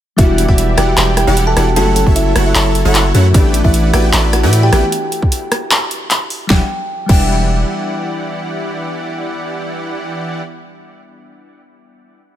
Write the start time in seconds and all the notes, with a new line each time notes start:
0.17 E1 E3 G3 B3 D4 E4 F#4 G4 D5 E5 F#5, kick, closed hi-hat
0.38 closed hi-hat
0.48 E1 E3 E4 F#4 G4 D5 E5 F#5, kick
0.58 closed hi-hat
0.77 E1 E3 E4 G4 D5 F#5 G5, cross-stick, closed hi-hat
0.97 E1 E3 E4 G4 D5 G5, clap, closed hi-hat
1.17 G4 G5, cross-stick, closed hi-hat
1.27 E1 E3 E4 G4 D5 F#5
1.37 closed hi-hat
1.47 A4 A5
1.56 E1 E3 G3 B3 D4 E4 F#4 G4 D5 F#5, cross-stick, closed hi-hat
1.75 F#1 F#3 A3 C#4 E4 F#4 A4 C#5 F#5 A5, closed hi-hat
1.96 A4 A5, closed hi-hat
2.07 F#1 F#3 E4 A4 C#5 E5, kick
2.16 E4 E5, closed hi-hat
2.36 F#1 F#3 E4 A4 C#5 F#5, cross-stick, closed hi-hat
2.46 E4 E5
2.55 F#1 F#3 E4 A4 C#5 A5, clap, closed hi-hat
2.75 closed hi-hat
2.85 F#1 F#3 E4 A4 C#5 F#5
2.95 clap, closed hi-hat
3.14 F#2 F#3 A3 C#4 E4 F#4 A4 C#5 F#5, closed hi-hat
3.32 A1 E3 A3 B3 D4 E4 B4 D5 G5, kick, closed hi-hat
3.36 G4
3.54 closed hi-hat
3.64 A1 A3 E4 B4 D5 E5 F#5, kick
3.74 closed hi-hat
3.93 A1 A3 E4 F#4 B4 D5 F#5 G5, cross-stick, closed hi-hat
4.13 A1 A3 E4 B4 D5 A5, clap, closed hi-hat
4.33 F#4 F#5, cross-stick, closed hi-hat
4.43 A2 A3 E4 B4 D5 G5
4.53 closed hi-hat
4.63 G4 G5
4.72 A1 E3 A3 B3 D4 E4 G4 B4 D5 G5, cross-stick, closed hi-hat
4.92 closed hi-hat
5.12 closed hi-hat
5.22 kick
5.32 closed hi-hat
5.52 cross-stick, closed hi-hat
5.71 clap, closed hi-hat
5.91 closed hi-hat
6.11 clap, closed hi-hat
6.30 open hi-hat
6.47 E1 E3 G3 B3 D4 E4 G4 D5 F#5 G5, kick, snare
6.52 E4 F#5
7.06 E1 E3 G3 B3 D4 E4 G4 D5 F#5 G5, kick, crash
7.11 E4 E5